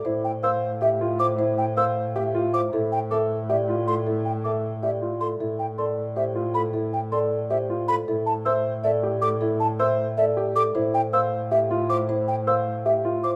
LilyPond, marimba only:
\new Staff \with { instrumentName = "Marimba" } { \time 7/8 \key f \lydian \tempo 4 = 157 c''8 r8 f''8 r8 e''8 r8 c''8 | c''8 r8 f''8 r8 e''8 r8 c''8 | a'8 r8 e''8 r8 d''8 r8 a'8 | a'8 r8 e''8 r8 d''8 r8 a'8 |
a'8 r8 d''8 r8 c''8 r8 a'8 | a'8 r8 d''8 r8 c''8 r8 a'8 | a'8 r8 e''8 r8 d''8 r8 a'8 | a'8 r8 e''8 r8 d''8 r8 a'8 |
c''8 r8 f''8 r8 e''8 r8 c''8 | c''8 r8 f''8 r8 e''8 r8 c''8 | }